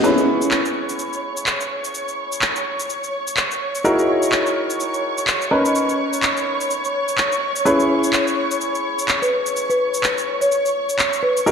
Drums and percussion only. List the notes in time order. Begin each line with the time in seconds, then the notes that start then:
0.04 shaker
0.18 shaker
0.42 shaker
0.51 clap, shaker
0.65 shaker
0.89 shaker
0.99 shaker
1.13 shaker
1.37 shaker
1.46 clap, shaker
1.61 shaker
1.84 shaker
1.94 shaker
2.08 shaker
2.32 shaker
2.42 clap, shaker
2.56 shaker
2.80 shaker
2.90 shaker
3.04 shaker
3.27 shaker
3.37 clap, shaker
3.51 shaker
3.75 shaker
3.85 shaker
3.99 shaker
4.23 shaker
4.32 clap, shaker
4.46 shaker
4.70 shaker
4.80 shaker
4.94 shaker
5.18 shaker
5.27 clap, shaker
5.42 shaker
5.65 shaker
5.75 shaker
5.89 shaker
6.13 shaker
6.23 clap, shaker
6.37 shaker
6.61 shaker
6.71 shaker
6.85 shaker
7.08 shaker
7.18 clap, shaker
7.32 shaker
7.56 shaker
7.66 shaker
7.80 shaker
8.04 shaker
8.13 clap, shaker
8.27 shaker
8.51 shaker
8.61 shaker
8.75 shaker
8.99 shaker
9.08 clap, shaker
9.23 shaker
9.46 shaker
9.56 shaker
9.70 shaker
9.94 shaker
10.04 clap, shaker
10.18 shaker
10.42 shaker
10.52 shaker
10.66 shaker
10.89 shaker
10.99 clap, shaker
11.13 shaker
11.37 shaker
11.47 shaker